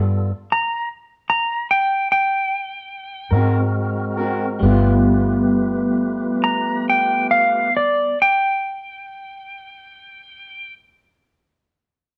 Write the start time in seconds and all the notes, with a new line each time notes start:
Already playing: G2 G3 B3 F4 A4
0.52 A#5
1.30 A#5
1.71 G5
2.12 G5
3.31 G#2 G#3 C4 F#4 A#4
4.17 C4 F#4 A#4
4.59 G1 G3 B3 F4 G4 B4
4.63 A3 F4
6.44 A#5
6.90 G5
7.31 F5
7.77 D5
8.22 G5